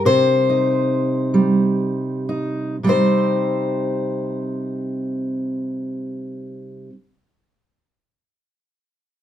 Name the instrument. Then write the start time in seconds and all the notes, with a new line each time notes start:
steel-string acoustic guitar
Already playing: G3
0.05 C3 C5
0.50 D#4
1.34 G3
2.29 D#4
2.83 C3 G3 C4
2.88 D#4 C5